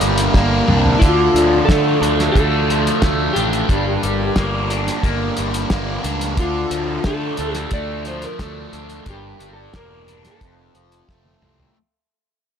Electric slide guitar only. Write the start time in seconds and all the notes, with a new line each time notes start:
0.99 F4
1.65 A4
2.32 A4
3.33 G4
6.39 F4
7.07 A4
7.54 G4
7.73 D5
8.08 C5
8.24 A#4
8.41 A4
9.10 G4
9.53 A4
9.77 A#4
10.27 A4